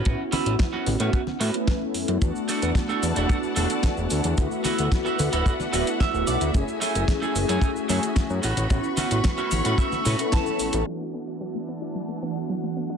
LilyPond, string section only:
\new Staff \with { instrumentName = "String section" } { \time 4/4 \key a \major \tempo 4 = 111 r1 | <e' d'' fis'' a''>1 | <d' b' e'' fis''>1 | <fis' gis''>2.~ <fis' gis''>8 <a b'' cis'''>8~ |
<a b'' cis'''>1 | <e d' fis'' a''>1 | }